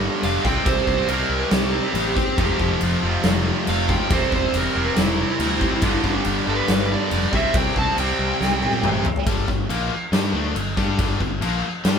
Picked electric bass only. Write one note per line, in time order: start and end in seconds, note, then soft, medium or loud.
0.23 0.36 F1 medium
0.45 0.58 C2 medium
0.66 0.79 C2 medium
0.87 1.01 C2 loud
1.09 1.22 C2 loud
1.30 1.43 C2 loud
1.52 1.78 C2 loud
1.94 2.21 A1 medium
2.38 2.51 F1 medium
2.60 2.73 F1 loud
2.81 2.94 F1 loud
3.03 3.16 F1 loud
3.24 3.50 F1 medium
3.68 3.94 F1 medium
4.10 4.24 E1 medium
4.32 4.45 E1 loud
4.54 4.67 E1 loud
4.75 4.88 E1 loud
4.97 5.23 E1 loud
5.40 5.66 D2 medium
5.82 5.95 G1 loud
6.04 6.17 G1 loud
6.26 6.39 G1 loud
6.47 6.60 G1 medium
6.68 6.95 G1 medium
7.12 7.25 F1 loud
7.33 7.46 C2 medium
7.54 7.67 C2 medium
7.76 7.89 C2 medium
7.98 8.11 C2 medium
8.19 8.32 C2 loud
8.41 8.67 C2 medium
8.83 9.09 A1 medium
9.26 9.46 G1 medium
9.48 9.68 G1 medium
9.69 9.89 A#1 loud
10.12 10.32 G2 medium
10.34 10.54 D2 loud
10.55 10.75 G1 medium
10.77 10.97 G2 medium
10.99 11.19 G1 medium
11.20 11.40 G1 medium
11.42 11.62 A#1 medium
11.85 11.99 G2 medium